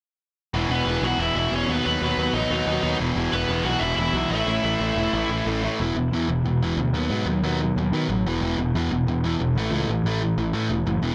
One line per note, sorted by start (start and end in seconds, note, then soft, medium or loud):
0.54 0.65 E1 medium
0.54 0.70 E2 medium
0.54 0.70 B2 medium
0.54 0.69 E3 medium
0.69 0.80 E1 medium
0.69 0.85 E2 medium
0.69 0.86 B2 medium
0.69 0.87 E3 medium
0.69 1.02 B3 medium
0.75 1.07 B4 medium
0.86 0.97 E1 medium
0.86 1.03 E2 medium
0.86 1.03 B2 medium
0.86 1.02 E3 medium
1.02 1.13 B1 medium
1.02 1.17 E2 medium
1.02 1.18 B2 medium
1.02 1.19 E3 medium
1.02 1.19 F#4 medium
1.07 1.22 F#5 medium
1.18 1.29 E1 loud
1.18 1.35 E2 medium
1.18 1.35 B2 medium
1.18 1.34 E3 medium
1.18 1.35 E4 medium
1.22 1.37 E5 loud
1.35 1.46 E1 medium
1.35 1.50 E2 medium
1.35 1.51 B2 medium
1.35 1.51 E3 loud
1.35 1.52 E4 medium
1.35 1.54 E5 medium
1.51 1.63 E1 medium
1.51 1.67 E2 medium
1.51 1.67 B2 medium
1.51 1.68 E3 loud
1.51 1.69 C#4 medium
1.56 1.72 C#5 medium
1.68 1.79 D#2 medium
1.68 1.85 B2 medium
1.68 1.85 F#3 medium
1.68 1.85 B3 loud
1.68 1.85 B3 medium
1.68 1.85 B4 medium
1.86 1.96 D#2 medium
1.86 2.00 B2 medium
1.86 2.01 F#3 medium
1.86 2.02 B3 loud
1.86 2.01 B3 medium
1.86 2.02 B4 medium
2.01 2.12 D#2 medium
2.01 2.18 B2 medium
2.01 2.18 F#3 medium
2.01 2.18 B3 loud
2.01 2.33 B3 medium
2.01 2.34 B4 medium
2.17 2.28 D#2 medium
2.17 2.34 B2 medium
2.17 2.35 F#3 loud
2.17 2.36 B3 loud
2.33 2.44 A1 medium
2.33 2.52 B2 medium
2.33 2.51 F#3 medium
2.33 2.51 B3 medium
2.33 2.97 D#4 medium
2.33 2.96 D#5 medium
2.50 2.61 D#2 medium
2.50 2.65 B2 medium
2.50 2.66 F#3 medium
2.50 2.67 B3 medium
2.67 2.77 D#2 medium
2.67 2.83 B2 loud
2.67 2.82 F#3 medium
2.67 2.81 B3 loud
2.83 2.94 D#2 medium
2.83 2.99 B2 medium
2.83 2.99 F#3 medium
2.83 2.99 B3 medium
3.00 3.11 E1 medium
3.00 3.16 E2 medium
3.00 3.16 B2 medium
3.00 3.16 E3 medium
3.16 3.27 E1 loud
3.16 3.32 E2 medium
3.16 3.33 B2 medium
3.16 3.34 E3 loud
3.33 3.44 E1 medium
3.33 3.51 E2 medium
3.33 3.49 B2 loud
3.33 3.50 E3 medium
3.33 3.64 B3 medium
3.33 3.67 B4 medium
3.49 3.59 E1 medium
3.49 3.65 E2 medium
3.49 3.65 B2 medium
3.49 3.67 E3 loud
3.63 3.75 B1 medium
3.63 3.81 E2 medium
3.63 3.81 B2 medium
3.63 3.81 E3 medium
3.63 3.82 F#4 medium
3.63 3.79 F#5 loud
3.80 3.92 E1 medium
3.80 3.98 E2 medium
3.80 3.98 B2 medium
3.80 4.00 E3 medium
3.80 3.98 E4 medium
3.80 3.95 E5 medium
3.97 4.08 E1 medium
3.97 4.15 E2 medium
3.97 4.14 B2 medium
3.97 4.14 E3 loud
3.97 4.30 E4 medium
3.97 4.30 E5 medium
4.13 4.24 B1 medium
4.13 4.31 E2 medium
4.13 4.31 B2 medium
4.13 4.32 E3 medium
4.30 4.41 A1 medium
4.30 4.47 A2 medium
4.30 4.47 E3 medium
4.30 4.47 A3 loud
4.30 5.44 E4 medium
4.30 5.42 E5 medium
4.46 4.57 A1 medium
4.46 4.63 A2 medium
4.46 4.63 E3 medium
4.46 4.64 A3 medium
4.64 4.74 A1 medium
4.64 4.81 A2 medium
4.64 4.80 E3 medium
4.64 4.80 A3 medium
4.80 4.90 A1 medium
4.80 4.95 A2 medium
4.80 4.96 E3 medium
4.80 4.97 A3 loud
4.96 5.07 E1 medium
4.96 5.14 A2 medium
4.96 5.14 E3 medium
4.96 5.13 A3 medium
5.13 5.24 A1 medium
5.13 5.30 A2 medium
5.13 5.30 E3 medium
5.13 5.31 A3 medium
5.29 5.40 A1 medium
5.29 5.48 A2 medium
5.29 5.47 E3 medium
5.29 5.46 A3 medium
5.45 5.67 A1 medium
5.45 5.61 A2 medium
5.45 5.62 E3 medium
5.45 5.63 A3 medium
5.63 5.78 A2 medium
5.63 5.79 E3 medium
5.63 5.79 A3 medium
5.80 5.94 E1 medium
5.80 5.95 E2 medium
5.80 5.95 B2 medium
5.80 5.96 E3 medium
5.95 6.09 E1 medium
5.95 6.11 E2 medium
5.95 6.11 B2 medium
6.11 6.26 E2 medium
6.11 6.28 E2 medium
6.11 6.28 B2 medium
6.11 6.29 E3 medium
6.28 6.42 E1 medium
6.28 6.44 E2 medium
6.28 6.44 B2 medium
6.44 6.72 E1 medium
6.44 6.60 E2 medium
6.44 6.60 B2 medium
6.62 6.77 E2 medium
6.62 6.77 B2 medium
6.62 6.78 E3 loud
6.77 6.91 D2 medium
6.77 6.93 E2 medium
6.77 6.93 B2 medium
6.93 7.07 D#2 medium
6.93 7.09 B2 medium
6.93 7.10 F#3 loud
6.93 7.10 B3 loud
7.10 7.24 G#2 medium
7.10 7.25 B2 medium
7.10 7.26 F#3 medium
7.10 7.27 B3 medium
7.26 7.40 D#2 medium
7.26 7.41 B2 medium
7.26 7.42 F#3 medium
7.43 7.71 D#2 medium
7.43 7.59 B2 medium
7.43 7.59 F#3 medium
7.43 7.59 B3 medium
7.61 7.75 B2 medium
7.61 7.75 F#3 medium
7.76 7.90 D#2 medium
7.76 7.92 B2 medium
7.76 7.92 F#3 medium
7.92 8.08 B2 medium
7.92 8.06 D#3 medium
7.92 8.08 F#3 medium
7.92 8.09 B3 medium
8.08 8.25 A1 medium
8.08 8.24 B2 medium
8.08 8.24 F#3 medium
8.25 8.39 E1 medium
8.25 8.41 E2 medium
8.25 8.42 B2 medium
8.25 8.42 E3 loud
8.41 8.55 E1 medium
8.41 8.57 E2 medium
8.41 8.58 B2 medium
8.41 8.58 E3 medium
8.57 8.72 E1 medium
8.57 8.73 E2 medium
8.57 8.73 B2 medium
8.75 8.89 E2 medium
8.75 8.90 E2 medium
8.75 8.91 B2 medium
8.75 8.91 E3 medium
8.91 9.05 E1 medium
8.91 9.06 E2 medium
8.91 9.06 B2 medium
9.07 9.35 E1 medium
9.07 9.23 E2 medium
9.07 9.23 B2 medium
9.24 9.39 E2 medium
9.24 9.39 B2 medium
9.24 9.40 E3 loud
9.39 9.54 E1 medium
9.39 9.55 E2 medium
9.39 9.56 B2 medium
9.55 9.70 A1 medium
9.55 9.72 A2 medium
9.55 9.73 E3 loud
9.55 9.73 A3 loud
9.72 9.86 C#2 medium
9.72 9.89 A2 medium
9.72 9.89 E3 loud
9.72 9.89 A3 medium
9.88 10.03 A1 medium
9.88 10.04 A2 medium
9.88 10.05 E3 medium
10.04 10.33 A1 medium
10.04 10.20 A2 medium
10.04 10.20 E3 medium
10.04 10.22 A3 medium
10.21 10.36 A2 medium
10.21 10.37 E3 medium
10.38 10.52 A1 medium
10.38 10.52 A2 medium
10.38 10.53 E3 medium
10.53 10.68 A2 medium
10.53 10.70 A2 medium
10.53 10.70 E3 medium
10.53 10.70 A3 loud
10.70 10.84 E1 medium
10.70 10.86 A2 medium
10.70 10.86 E3 medium
10.86 11.01 F#1 medium
10.86 11.02 A2 medium
10.86 11.02 E3 medium
11.02 11.15 E1 medium
11.02 11.15 E2 medium
11.02 11.15 B2 medium
11.02 11.15 E3 loud